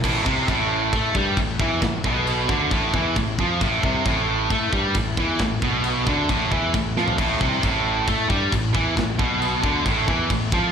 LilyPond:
<<
  \new Staff \with { instrumentName = "Distorted electric guitar" } { \clef bass \time 4/4 \key a \minor \tempo 4 = 134 a,8 c8 a,4 a8 g8 a,8 e8 | a,8 b,4 d8 a,8 e8 a,8 f8 | a,8 c8 a,4 a8 g8 a,8 e8 | a,8 b,4 d8 a,8 e8 a,8 f8 |
a,8 c8 a,4 a8 g8 a,8 e8 | a,8 b,4 d8 a,8 e8 a,8 f8 | }
  \new Staff \with { instrumentName = "Distorted electric guitar" } { \clef bass \time 4/4 \key a \minor a,8 c8 a,4 a8 g8 a,8 e8 | a,8 b,4 d8 a,8 e8 a,8 f8 | a,8 c8 a,4 a8 g8 a,8 e8 | a,8 b,4 d8 a,8 e8 a,8 f8 |
a,8 c8 a,4 a8 g8 a,8 e8 | a,8 b,4 d8 a,8 e8 a,8 f8 | }
  \new Staff \with { instrumentName = "Fingered electric bass" } { \clef bass \time 4/4 \key a \minor a,,8 c,8 a,,4 a,8 g,8 a,,8 e,8 | a,,8 b,,4 d,8 a,,8 e,8 a,,8 f,8 | a,,8 c,8 a,,4 a,8 g,8 a,,8 e,8 | a,,8 b,,4 d,8 a,,8 e,8 a,,8 f,8 |
a,,8 c,8 a,,4 a,8 g,8 a,,8 e,8 | a,,8 b,,4 d,8 a,,8 e,8 a,,8 f,8 | }
  \new DrumStaff \with { instrumentName = "Drums" } \drummode { \time 4/4 <cymc bd>8 bd8 <cymc bd>4 <cymc bd>8 bd8 <cymc bd>8 bd8 | <cymc bd sn>8 bd8 cymc8 bd8 <cymc bd>8 bd8 <cymc bd>8 bd8 | <cymc bd>8 bd8 <cymc bd>4 <cymc bd>8 bd8 <cymc bd>8 bd8 | <cymc bd sn>8 bd8 cymc8 bd8 <cymc bd>8 bd8 <cymc bd>8 sn16 tomfh16 |
<cymc bd>8 bd8 <cymc bd>4 <cymc bd>8 bd8 <cymc bd>8 bd8 | <cymc bd sn>8 bd8 cymc8 bd8 <cymc bd>8 bd8 <cymc bd>8 bd8 | }
>>